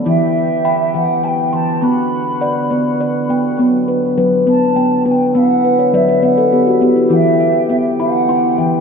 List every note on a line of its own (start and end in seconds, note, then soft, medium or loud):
0.06 1.81 E3 medium
0.06 0.90 E3 loud
0.06 3.55 B3 medium
0.06 0.65 E4 medium
0.06 1.81 G4 medium
0.06 0.91 E5 medium
0.65 0.93 G5 medium
0.65 1.53 B5 medium
0.94 1.49 E3 medium
0.94 1.25 F#5 medium
0.94 1.22 G5 medium
1.23 1.82 G5 medium
1.23 1.28 A5 medium
1.27 1.53 G5 medium
1.53 1.80 E3 medium
1.53 1.84 A5 medium
1.53 2.12 C6 medium
1.82 3.57 D3 medium
1.82 2.41 B3 medium
1.82 3.57 F#4 medium
1.82 3.29 B5 medium
2.41 2.69 D5 medium
2.41 3.29 F#5 medium
2.71 3.25 B3 medium
2.71 2.99 D5 medium
3.00 3.59 D5 medium
3.29 3.56 B3 medium
3.29 3.88 G5 medium
3.58 7.08 D3 medium
3.58 5.33 F#3 medium
3.58 8.80 B3 soft
3.58 4.18 B3 medium
3.88 4.16 B4 medium
4.17 4.44 F#3 medium
4.17 4.19 B4 medium
4.47 4.75 B3 medium
4.47 5.02 A5 medium
4.76 5.04 B3 medium
4.76 5.64 G5 medium
5.05 5.19 B3 medium
5.05 5.63 B4 medium
5.05 5.12 A5 medium
5.11 5.38 G5 medium
5.35 5.90 B3 medium
5.35 7.09 E4 medium
5.35 5.94 F#5 medium
5.64 5.92 B4 medium
5.79 6.06 C#5 medium
5.93 6.20 F#3 medium
5.93 6.22 B4 medium
5.93 6.21 D5 medium
5.93 6.25 E5 medium
6.09 6.36 C#5 medium
6.22 6.51 B3 medium
6.22 6.50 B4 medium
6.22 6.89 F#5 medium
6.38 6.65 A4 medium
6.52 6.80 B3 medium
6.52 6.80 G4 medium
6.67 6.94 F#4 medium
6.81 6.95 B3 medium
6.81 7.09 G4 medium
6.96 7.10 E4 medium
7.10 8.80 E3 medium
7.10 7.65 E3 medium
7.10 7.70 E4 medium
7.10 8.80 G4 medium
7.10 7.15 F#5 medium
7.14 7.66 E5 medium
7.40 7.69 E5 medium
7.69 7.97 B3 medium
7.69 7.76 E5 medium
7.69 7.72 E5 medium
7.99 8.28 E4 medium
7.99 8.59 F#5 medium
7.99 8.80 B5 medium
8.29 8.80 E4 medium
8.29 8.80 C6 medium
8.58 8.72 E3 medium
8.58 8.80 E5 medium
8.58 8.80 G5 medium